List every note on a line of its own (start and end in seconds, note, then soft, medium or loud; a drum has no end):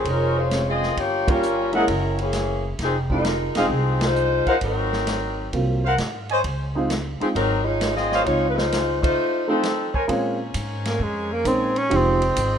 0.00 0.42 G#4 medium
0.00 0.42 A#4 medium
0.00 0.42 C5 medium
0.00 0.42 C#5 medium
0.05 0.92 F1 medium
0.05 0.37 C#4 medium
0.05 0.37 A#4 medium
0.05 kick soft
0.05 ride medium
0.09 0.36 G#3 medium
0.09 0.36 F4 medium
0.37 0.67 G#3 medium
0.37 0.67 F4 medium
0.37 0.68 C5 medium
0.37 0.67 C#5 medium
0.49 0.78 G#3 soft
0.49 0.78 C4 soft
0.49 0.79 C#4 soft
0.49 0.79 G#4 soft
0.49 snare medium
0.49 hi-hat pedal soft
0.49 ride medium
0.68 0.96 C4 medium
0.68 0.96 F4 medium
0.68 0.96 G#4 medium
0.68 0.96 D#5 medium
0.83 snare soft
0.97 1.84 G1 medium
0.97 1.28 A#3 medium
0.97 1.28 F4 medium
0.97 1.29 G4 medium
0.97 1.28 C#5 medium
0.97 kick soft
0.97 ride medium
1.27 1.41 G3 medium
1.27 1.74 G3 medium
1.27 1.41 A#3 soft
1.27 1.41 C#4 soft
1.27 1.73 C#4 medium
1.27 1.41 F4 medium
1.27 1.74 F4 medium
1.27 1.70 G4 medium
1.27 1.70 A#4 medium
1.27 1.74 A#4 medium
1.27 1.70 C#5 medium
1.27 1.70 F5 medium
1.27 kick medium
1.27 ride medium
1.43 hi-hat pedal medium
1.72 1.86 G#3 medium
1.72 2.16 G#3 medium
1.72 1.86 A#3 soft
1.72 1.87 C#4 soft
1.72 2.16 C#4 medium
1.72 1.87 E4 medium
1.72 2.17 E4 medium
1.72 1.84 G#4 medium
1.72 1.84 A#4 medium
1.72 2.16 A#4 medium
1.72 1.84 E5 medium
1.72 1.84 F#5 medium
1.72 ride soft
1.88 2.75 F#1 medium
1.88 kick soft
1.88 ride medium
2.18 2.65 E3 medium
2.18 2.65 A#3 medium
2.18 2.65 C#4 medium
2.18 2.66 G#4 medium
2.18 ride soft
2.33 snare medium
2.33 hi-hat pedal soft
2.33 ride medium
2.79 3.51 F1 medium
2.79 kick soft
2.79 snare soft
2.79 ride medium
2.83 2.96 F3 medium
2.83 2.96 C4 medium
2.83 2.96 D#4 medium
2.83 2.96 G#4 medium
3.10 3.23 G#3 medium
3.10 3.54 G#3 medium
3.10 3.23 C4 soft
3.10 3.24 D#4 soft
3.10 3.53 D#4 medium
3.10 3.24 F4 medium
3.10 3.53 F4 medium
3.10 3.54 A#4 medium
3.10 kick medium
3.25 snare medium
3.25 hi-hat pedal medium
3.25 ride medium
3.55 3.69 E1 medium
3.55 4.02 F3 medium
3.55 3.69 G#3 medium
3.55 3.69 C4 medium
3.55 4.02 C4 medium
3.55 3.69 D#4 medium
3.55 4.02 D#4 medium
3.55 3.70 F4 medium
3.55 3.65 G#4 medium
3.55 4.02 G#4 medium
3.55 3.66 C5 medium
3.55 3.66 D#5 medium
3.55 3.66 F5 medium
3.55 snare soft
3.55 ride medium
3.70 4.42 C2 medium
3.70 kick soft
4.01 4.48 G#3 medium
4.01 4.47 D#4 medium
4.01 4.47 F4 medium
4.01 4.48 C5 loud
4.01 snare medium
4.01 ride medium
4.15 hi-hat pedal soft
4.46 4.55 G#3 medium
4.46 4.55 D#4 medium
4.46 4.55 F4 medium
4.46 4.56 A#4 medium
4.46 4.57 C5 medium
4.46 4.55 C5 medium
4.46 4.56 F5 medium
4.46 4.56 F#5 medium
4.46 muted upright bass stroke soft
4.46 kick soft
4.46 ride soft
4.61 5.49 G#1 medium
4.61 5.50 F#3 medium
4.61 5.50 C4 medium
4.61 5.49 D#4 medium
4.61 5.50 A#4 medium
4.61 kick soft
4.61 ride medium
4.93 snare soft
5.07 snare medium
5.07 hi-hat pedal medium
5.07 ride medium
5.53 5.95 C2 medium
5.53 5.81 F#3 soft
5.53 5.81 A#3 soft
5.53 5.81 C4 soft
5.53 5.81 F4 medium
5.53 kick soft
5.53 ride medium
5.84 5.94 A#4 medium
5.84 5.94 C5 medium
5.84 5.94 F5 medium
5.84 5.94 F#5 loud
5.98 6.41 G#2 medium
5.98 snare medium
5.98 hi-hat pedal soft
5.98 ride medium
6.29 6.39 C5 loud
6.29 6.39 C#5 medium
6.29 6.40 D#5 medium
6.29 6.39 G#5 medium
6.29 ride soft
6.44 7.17 C#2 medium
6.44 kick soft
6.44 ride medium
6.75 6.88 G#3 medium
6.75 6.89 C4 medium
6.75 6.89 D#4 medium
6.75 6.89 F4 medium
6.90 snare medium
6.90 hi-hat pedal medium
6.90 ride medium
7.20 7.27 F3 medium
7.20 7.34 G#3 soft
7.20 7.28 C4 medium
7.20 7.34 C4 medium
7.20 7.34 D#4 medium
7.20 7.28 D#4 medium
7.20 7.34 F4 medium
7.20 7.28 G#4 medium
7.20 muted upright bass stroke soft
7.20 ride soft
7.34 8.22 G#1 medium
7.34 7.64 F#3 medium
7.34 7.63 C4 medium
7.34 7.63 D#4 medium
7.34 7.63 A#4 medium
7.34 kick soft
7.34 ride medium
7.63 7.95 G#3 medium
7.63 7.95 D#4 medium
7.63 7.95 F4 medium
7.63 7.95 C#5 medium
7.81 snare medium
7.81 hi-hat pedal soft
7.81 ride medium
7.95 8.24 C4 medium
7.95 8.23 F4 medium
7.95 8.24 G#4 medium
7.95 8.24 D#5 medium
7.95 snare soft
8.12 8.22 C5 medium
8.12 8.21 C#5 medium
8.12 8.22 D#5 medium
8.12 8.22 F5 loud
8.12 snare soft
8.24 9.13 C#2 medium
8.24 8.46 G#3 medium
8.24 8.54 G#3 soft
8.24 8.54 C4 soft
8.24 8.46 D#4 medium
8.24 8.54 D#4 soft
8.24 8.46 F4 medium
8.24 8.47 C#5 loud
8.24 kick soft
8.24 ride medium
8.28 8.55 F4 medium
8.49 8.58 B4 medium
8.54 9.01 G#3 medium
8.54 9.00 D#4 medium
8.54 9.01 F4 medium
8.54 9.00 C5 medium
8.54 snare medium
8.72 snare medium
8.72 hi-hat pedal medium
8.72 ride medium
9.01 9.44 A3 medium
9.01 9.44 D#4 medium
9.01 9.45 F4 medium
9.01 9.44 C5 medium
9.01 kick medium
9.01 ride medium
9.47 9.91 F3 medium
9.47 9.61 A3 medium
9.47 9.62 C4 medium
9.47 9.91 C4 medium
9.47 9.61 D#4 medium
9.47 9.91 D#4 medium
9.47 9.62 F4 medium
9.47 9.91 A4 medium
9.63 snare medium
9.63 hi-hat pedal soft
9.63 ride medium
9.94 10.04 A#4 medium
9.94 10.04 C5 medium
9.94 10.04 C#5 medium
9.94 10.04 G#5 medium
9.94 kick soft
10.07 10.53 A#2 medium
10.07 10.36 G#3 medium
10.07 10.36 A#3 medium
10.07 10.36 C4 medium
10.07 10.36 C#4 medium
10.07 11.89 C#4 medium
10.07 10.36 F4 medium
10.07 11.89 A#4 medium
10.07 11.89 C5 medium
10.07 11.89 G#5 medium
10.07 kick soft
10.07 ride medium
10.54 10.98 G#2 loud
10.54 kick soft
10.54 hi-hat pedal medium
10.54 ride medium
10.85 11.04 A#3 medium
10.85 snare soft
10.85 ride medium
11.00 11.44 F2 medium
11.00 11.34 G#3 medium
11.00 kick soft
11.32 11.49 A#3 medium
11.45 11.89 A#1 medium
11.45 11.73 G#3 soft
11.45 11.73 A#3 soft
11.45 11.73 C4 medium
11.45 11.79 C4 medium
11.45 11.73 C#4 soft
11.45 11.73 D#4 medium
11.45 kick soft
11.45 hi-hat pedal medium
11.45 ride medium
11.76 11.97 C#4 medium
11.76 ride soft
11.90 12.35 F1 medium
11.90 12.18 F3 medium
11.90 12.18 G#3 medium
11.90 12.18 C4 medium
11.90 12.18 D#4 medium
11.90 12.58 F4 medium
11.90 12.19 G4 medium
11.90 12.58 G#4 medium
11.90 12.58 D#5 medium
11.90 12.58 G5 medium
11.90 kick soft
11.90 ride medium
11.96 12.58 C4 medium
12.22 ride medium
12.36 12.58 G#1 medium
12.36 kick soft
12.36 hi-hat pedal medium
12.36 ride medium